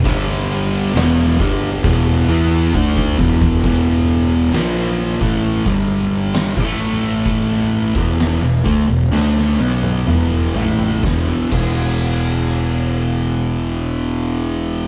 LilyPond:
<<
  \new Staff \with { instrumentName = "Distorted electric guitar" } { \clef bass \time 4/4 \key e \minor \tempo 4 = 65 <g, d g>4 <e, b, e>8 <g, d g>8 <e, b, e>8 <e b e'>8 <d a d'>8 <e, b, e>8 | <e, b, e>4 <ais, f ais>8. <a, e a>8 <g, d g>4 <a, e a>8.~ | <a, e a>8. <e, b, e>8 <e, b,>16 <d a>16 <e, b,>16 <d a d'>8 <b, fis b>8 <e, b, e>8 <a, e a>8 | <e, b, e>16 r16 <e, b, e>2.~ <e, b, e>8 | }
  \new Staff \with { instrumentName = "Picked electric bass" } { \clef bass \time 4/4 \key e \minor g,,4 e,,8 g,,8 e,,8 e,8 d,8 e,,8 | e,,4 ais,,8. a,,8 g,,4 a,,8.~ | a,,8. e,,8 e,,16 d,16 e,,16 d,8 b,,8 e,,8 a,,8 | e,,16 r16 e,,2.~ e,,8 | }
  \new DrumStaff \with { instrumentName = "Drums" } \drummode { \time 4/4 <hho bd>16 sn16 hho8 <hho sn>8 <hho bd>8 <hho bd>8 hho8 bd16 bd16 bd16 bd16 | <hho bd>4 <hho sn>8. bd16 hho16 bd8. <hho sn>16 bd8. | <hho bd>16 sn8 bd16 <hho sn>8 bd8 sn16 sn8 tommh16 toml8 tomfh16 tomfh16 | <bd sn>8 <cymc bd>8 r4 r4 r4 | }
>>